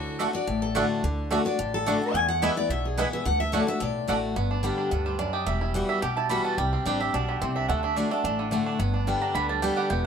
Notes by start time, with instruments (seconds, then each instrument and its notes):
Already playing: upright bass D2, steel-string acoustic guitar D3, fiddle F#4
0.19 steel-string acoustic guitar D3 A3 D4 F#4, mandolin A3 F#4 D5 F#5, five-string banjo A3 D4
0.33 steel-string acoustic guitar D4 F#4 D5
0.47 upright bass A1, steel-string acoustic guitar A2
0.62 steel-string acoustic guitar A4
0.75 steel-string acoustic guitar D3 A3 D4 F#4, mandolin A3 F#4 D5 F#5, five-string banjo A3 D4
1.03 upright bass D2, steel-string acoustic guitar D3
1.30 steel-string acoustic guitar D3 A3 D4 F#4, mandolin A3 F#4 D5 F#5, five-string banjo A3 D4
1.45 steel-string acoustic guitar D4 F#4 D5
1.59 upright bass A1, steel-string acoustic guitar A2
1.74 steel-string acoustic guitar A4
1.86 steel-string acoustic guitar D3 A3 D4 F#4, mandolin A3 F#4 D5 F#5, five-string banjo A3 D4
2.02 steel-string acoustic guitar D4 F#4
2.14 upright bass E2, steel-string acoustic guitar E2 G#5
2.28 steel-string acoustic guitar F#5
2.42 steel-string acoustic guitar E3 G#3 B3 E4 E5, five-string banjo G#3 B3 E4, mandolin B3 E4 B4 G#5
2.57 steel-string acoustic guitar B3 E4 D5
2.70 upright bass B1, steel-string acoustic guitar B2 E5
2.85 steel-string acoustic guitar G#4
2.97 steel-string acoustic guitar E3 G#3 B3 E4 B4, five-string banjo G#3 B3 E4, mandolin B3 E4 B4 G#5
3.13 steel-string acoustic guitar E5
3.25 upright bass D2, steel-string acoustic guitar D3 F#5
3.40 steel-string acoustic guitar E5
3.52 steel-string acoustic guitar D3 A3 D4 F#4 C#5, mandolin A3 F#4 D5 F#5, five-string banjo A3 D4
3.67 steel-string acoustic guitar D4 F#4 E5
3.80 upright bass B1, steel-string acoustic guitar A2 D5
4.08 upright bass A1, steel-string acoustic guitar D3 A3 D4 F#4, mandolin A3 F#4 D5 F#5, five-string banjo A3 D4
4.36 upright bass G1, steel-string acoustic guitar G2, five-string banjo B3
4.51 five-string banjo D4
4.63 steel-string acoustic guitar D3 G3 B3 G4, five-string banjo G3
4.78 five-string banjo D4
4.91 upright bass D2, steel-string acoustic guitar G2, five-string banjo B3
5.06 five-string banjo G3, mandolin C5
5.19 steel-string acoustic guitar F#2, five-string banjo D4, mandolin D5
5.33 five-string banjo G4, mandolin D#5
5.46 upright bass E1, steel-string acoustic guitar E2, five-string banjo G3, mandolin E5
5.61 five-string banjo E4, mandolin G4
5.74 steel-string acoustic guitar E3 G3 B3 F#4, mandolin B4
5.89 five-string banjo G3, mandolin E5
6.02 upright bass B1, steel-string acoustic guitar B2, five-string banjo G4, mandolin G5
6.17 five-string banjo E4, mandolin A5
6.29 steel-string acoustic guitar E3 G3 B3 F#4, five-string banjo G3, mandolin B5
6.45 five-string banjo B3, mandolin A5
6.58 upright bass C2, steel-string acoustic guitar C3, five-string banjo G3, mandolin G5
6.73 five-string banjo C4
6.86 upright bass A1, steel-string acoustic guitar G3 C4 D4 G4, five-string banjo G4
7.00 five-string banjo G3, steel-string acoustic guitar D4 G4, mandolin E5
7.14 upright bass B1, steel-string acoustic guitar B2, five-string banjo D4, mandolin D5
7.28 five-string banjo D3, mandolin G4
7.41 upright bass C2, steel-string acoustic guitar C3, five-string banjo C4, mandolin C5
7.56 five-string banjo D4, mandolin E5
7.68 upright bass D2, steel-string acoustic guitar D3, five-string banjo A3, mandolin F#5
7.83 five-string banjo D4, mandolin E5
7.96 steel-string acoustic guitar D3 A3 D4 F#4, five-string banjo D4, mandolin D5
8.11 five-string banjo A3, steel-string acoustic guitar D4 F#4, mandolin D5
8.24 upright bass A1, steel-string acoustic guitar A2, five-string banjo D4
8.39 five-string banjo D3
8.51 steel-string acoustic guitar D3 A3 D4 F#4, five-string banjo D4
8.66 five-string banjo D4
8.79 upright bass G1, steel-string acoustic guitar G2, five-string banjo B3
8.94 five-string banjo D4
9.07 steel-string acoustic guitar D3 G3 B3 G4, five-string banjo G3
9.22 five-string banjo D4, mandolin A#5
9.35 upright bass D2, steel-string acoustic guitar D3, five-string banjo B3, mandolin B5
9.49 five-string banjo G3, mandolin A5
9.62 steel-string acoustic guitar D3 G3 B3 G4, five-string banjo D4, mandolin G5
9.77 five-string banjo G4, mandolin F#5
9.90 upright bass E1, steel-string acoustic guitar E2, five-string banjo B3, mandolin G5